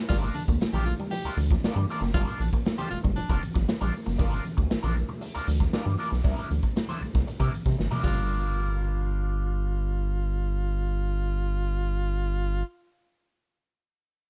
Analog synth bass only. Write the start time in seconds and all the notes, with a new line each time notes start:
0.10 G1
0.48 D2
0.61 A#1
0.73 A#1
1.24 D2
1.37 D2
1.76 G2
2.01 F#1
2.14 G1
2.40 A#1
2.91 G1
3.04 G1
3.17 F1
3.30 F1
3.56 G1
3.68 A#1
3.81 A#1
4.07 F#1
4.19 G1
4.58 D2
4.71 A#1
4.84 A#1
5.36 D2
5.48 D2
5.86 G2
6.12 B1
6.24 C2
6.51 D2
7.02 C2
7.15 C2
7.40 C3
7.66 C3
7.79 G1
8.04 G1